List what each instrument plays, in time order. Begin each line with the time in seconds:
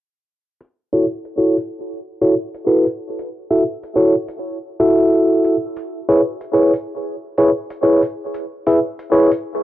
0.61 closed hi-hat
0.93 tine electric piano E4 F#4 A4 C#5, closed hi-hat
1.25 closed hi-hat
1.38 tine electric piano E4 F#4 A4 C#5
1.57 closed hi-hat
2.22 tine electric piano E4 F#4 A4 C#5, closed hi-hat
2.54 closed hi-hat
2.67 tine electric piano E4 F#4 A4 B4
2.86 closed hi-hat
3.19 closed hi-hat
3.51 tine electric piano E4 F#4 A4 E5, closed hi-hat
3.83 closed hi-hat
3.96 tine electric piano E4 F#4 A4 C#5
4.28 closed hi-hat
4.80 tine electric piano E4 F#4 A4 E5, closed hi-hat
5.12 closed hi-hat
5.44 closed hi-hat
5.77 closed hi-hat
6.09 tine electric piano E4 G#4 B4 C#5, closed hi-hat
6.41 closed hi-hat
6.53 tine electric piano E4 G#4 B4 C#5
6.74 closed hi-hat
7.38 tine electric piano E4 G#4 B4 C#5, closed hi-hat
7.70 closed hi-hat
7.83 tine electric piano E4 G#4 B4 C#5
8.02 closed hi-hat
8.34 closed hi-hat
8.67 tine electric piano E4 G#4 B4 E5, closed hi-hat
8.99 closed hi-hat
9.12 tine electric piano E4 G#4 B4 C#5
9.32 closed hi-hat